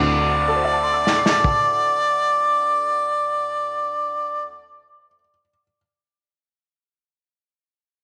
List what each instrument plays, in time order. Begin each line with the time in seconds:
Already playing: fingered electric bass D2, upright piano D2 D3 C4 E4 F#4, harmonica D5
0.48 upright piano A4
0.56 upright piano C5
0.64 upright piano E5
0.73 upright piano A5
0.83 upright piano C6
0.93 upright piano E6
1.05 upright piano A6, snare
1.18 upright piano C7
1.26 snare
1.44 kick